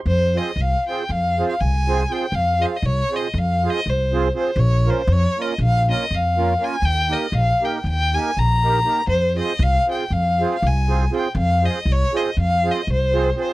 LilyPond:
<<
  \new Staff \with { instrumentName = "Violin" } { \time 9/8 \key f \minor \tempo 4. = 80 c''8 ees''8 f''8 g''8 f''8. f''16 aes''4 g''8 | f''8 ees''32 f''32 ees''16 des''8 ees''8 f''8 ees''8 c''4 c''8 | des''8 c''8 des''8 ees''8 f''8 ees''8 f''4 aes''8 | g''8 ees''8 f''8 g''8 g''8 aes''8 bes''4. |
c''8 ees''8 f''8 g''8 f''8. f''16 aes''4 g''8 | f''8 ees''8 des''8 ees''8 f''8 ees''8 c''4 c''8 | }
  \new Staff \with { instrumentName = "Accordion" } { \time 9/8 \key f \minor r8 <c' f' aes' c''>8 r8 <c' f' aes' c''>8 r8 <c' f' aes' c''>8 r8 <c' f' aes' c''>8 <c' f' aes' c''>8 | r8 <c' f' aes' c''>8 r8 <c' f' aes' c''>8 r8 <c' f' aes' c''>8 r8 <c' f' aes' c''>8 <c' f' aes' c''>8 | r8 <bes des' f' bes'>8 r8 <bes des' f' bes'>8 r8 <bes des' f' bes'>8 r8 <bes des' f' bes'>8 <bes des' f' bes'>8 | r8 <bes ees' g' bes'>8 r8 <bes ees' g' bes'>8 r8 <bes ees' g' bes'>8 r8 <bes ees' g' bes'>8 <bes ees' g' bes'>8 |
r8 <c' f' aes' c''>8 r8 <c' f' aes' c''>8 r8 <c' f' aes' c''>8 r8 <c' f' aes' c''>8 <c' f' aes' c''>8 | r8 <c' f' aes' c''>8 r8 <c' f' aes' c''>8 r8 <c' f' aes' c''>8 r8 <c' f' aes' c''>8 <c' f' aes' c''>8 | }
  \new Staff \with { instrumentName = "Upright bass" } { \clef bass \time 9/8 \key f \minor f,4 c,8 r8 f,4 c,4. | f,4 c,8 r8 f,4 c,4. | bes,,4 f,8 r8 bes,,4 f,4. | ees,4 bes,,8 r8 ees,4 bes,,4. |
f,4 c,8 r8 f,4 c,4. | f,4 c,8 r8 f,4 c,4. | }
>>